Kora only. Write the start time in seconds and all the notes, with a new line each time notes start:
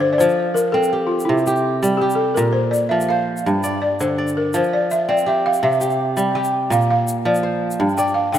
Already playing: G2 D3 D5
0.20 F3
0.74 C4
0.93 G4
1.29 C3
1.47 G4
1.83 G3
2.01 G4
2.37 A#2
2.91 F3
3.10 C5
3.46 G2
3.64 D5
4.00 D3
4.18 D5
4.54 F3
5.09 C4
5.26 G4
5.63 C3
5.81 G4
6.17 G3
6.35 G4
6.70 A#2
7.25 F3
7.43 C5
7.80 G2
7.98 D5
8.34 D3